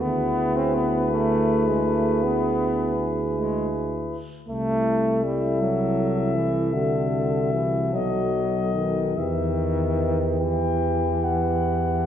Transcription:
0.01 4.22 D2 soft
0.01 0.58 B3 medium
0.01 4.18 E4 soft
0.01 4.33 G#4 medium
0.01 4.18 B4 soft
0.56 0.76 C4 medium
0.75 1.11 B3 medium
1.11 1.69 A3 medium
1.68 1.88 G#3 medium
1.87 2.25 A3 medium
2.24 3.09 B3 medium
3.37 3.72 G#3 medium
4.48 7.96 C2 soft
4.48 5.26 A3 medium
4.48 6.76 E4 soft
4.48 9.14 A4 soft
4.48 7.97 E5 soft
5.24 5.63 G3 medium
5.61 6.37 F#3 medium
6.35 6.76 E3 medium
6.74 7.54 D3 soft
6.74 9.18 F#4 soft
7.53 7.94 E3 soft
7.93 9.18 B1 soft
7.93 8.74 F#3 medium
7.93 9.19 D#5 soft
8.75 9.16 D#3 soft
9.16 12.06 E2 soft
9.16 10.43 D#3 medium
9.16 12.06 G4 soft
9.16 12.06 B4 soft
9.16 10.23 E5 soft
10.40 12.06 E3 soft
10.40 11.25 G5 soft
11.24 12.06 F#5 soft

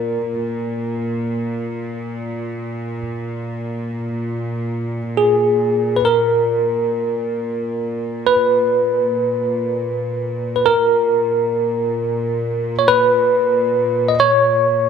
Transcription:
0.00 10.79 A#2 soft
0.00 3.01 A#4 medium
5.17 5.99 G#4 medium
5.96 6.06 B4 soft
6.05 8.34 A#4 medium
8.27 10.55 B4 medium
10.56 10.66 B4 soft
10.66 12.75 A#4 medium
10.80 14.89 A#2 soft
12.79 12.88 C#5 medium
12.88 14.14 B4 medium
14.08 14.18 D#5 medium
14.20 14.89 C#5 medium

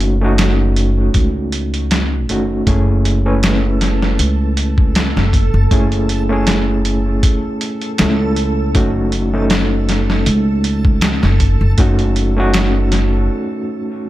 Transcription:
0.00 1.12 F#1 loud
0.00 0.21 A3 medium
0.00 0.23 C#4 medium
0.00 0.24 D#4 medium
0.00 0.25 F#4 medium
0.00 closed hi-hat medium
0.21 1.87 A3 medium
0.21 1.87 C#4 medium
0.21 1.88 D#4 medium
0.21 1.88 F#4 medium
0.38 snare loud
0.38 closed hi-hat medium
0.76 closed hi-hat medium
1.14 2.29 C#2 medium
1.14 kick loud
1.14 closed hi-hat medium
1.52 closed hi-hat medium
1.74 closed hi-hat soft
1.91 snare loud
1.91 closed hi-hat medium
2.29 2.63 F#1 medium
2.29 2.63 A3 medium
2.29 2.64 C#4 medium
2.29 2.64 D#4 medium
2.29 2.64 F#4 medium
2.29 closed hi-hat medium
2.67 4.16 F#1 medium
2.67 3.21 A3 medium
2.67 3.21 C#4 medium
2.67 3.21 E4 medium
2.67 3.22 G#4 medium
2.67 13.30 A4 medium
2.67 kick loud
2.67 closed hi-hat medium
3.05 closed hi-hat medium
3.26 3.37 A3 medium
3.26 3.37 C#4 medium
3.26 3.37 E4 medium
3.26 3.38 B4 medium
3.43 snare loud
3.43 closed hi-hat medium
3.81 snare soft
3.81 closed hi-hat medium
4.02 snare soft
4.19 5.12 C#2 medium
4.19 closed hi-hat medium
4.57 closed hi-hat medium
4.78 kick medium
4.95 snare loud
4.95 closed hi-hat medium
5.17 5.49 F#1 medium
5.17 snare medium
5.33 kick medium
5.33 closed hi-hat medium
5.54 5.69 F#1 loud
5.71 7.20 F#1 medium
5.71 5.84 A3 medium
5.71 5.84 C#4 medium
5.71 5.85 E4 medium
5.71 5.85 G#4 medium
5.71 kick loud
5.71 closed hi-hat medium
5.92 closed hi-hat soft
6.09 closed hi-hat medium
6.29 7.95 A3 medium
6.29 7.95 C#4 medium
6.29 7.96 E4 medium
6.29 7.96 G#4 loud
6.47 snare loud
6.47 closed hi-hat medium
6.85 closed hi-hat medium
7.23 kick loud
7.23 closed hi-hat medium
7.61 closed hi-hat medium
7.81 closed hi-hat soft
7.98 8.72 C#2 loud
7.98 8.71 A3 medium
7.98 8.71 C#4 medium
7.98 8.71 E4 medium
7.98 8.72 A4 medium
7.98 snare loud
7.98 closed hi-hat medium
8.36 closed hi-hat medium
8.75 10.23 F#1 loud
8.75 9.28 A3 medium
8.75 9.29 C#4 medium
8.75 9.29 D#4 medium
8.75 9.29 F#4 loud
8.75 kick loud
8.75 closed hi-hat medium
9.12 closed hi-hat medium
9.34 9.45 A3 medium
9.34 9.45 C#4 medium
9.34 9.45 D#4 medium
9.34 9.45 A4 medium
9.50 snare loud
9.50 closed hi-hat medium
9.89 snare medium
9.89 closed hi-hat medium
10.10 snare medium
10.26 11.19 C#2 medium
10.26 closed hi-hat medium
10.64 closed hi-hat medium
10.85 kick medium
11.01 snare loud
11.01 closed hi-hat medium
11.23 11.56 F#1 loud
11.23 snare medium
11.40 kick medium
11.40 closed hi-hat medium
11.61 11.76 F#1 loud
11.78 13.27 F#1 medium
11.78 11.92 A3 medium
11.78 11.92 C#4 medium
11.78 11.92 D#4 medium
11.78 11.93 F#4 loud
11.78 kick loud
11.78 closed hi-hat medium
11.99 closed hi-hat soft
12.16 closed hi-hat medium
12.37 14.02 A3 medium
12.37 14.02 C#4 medium
12.37 14.03 D#4 medium
12.37 14.03 F#4 loud
12.54 snare loud
12.54 closed hi-hat medium
12.92 snare soft
12.92 closed hi-hat medium

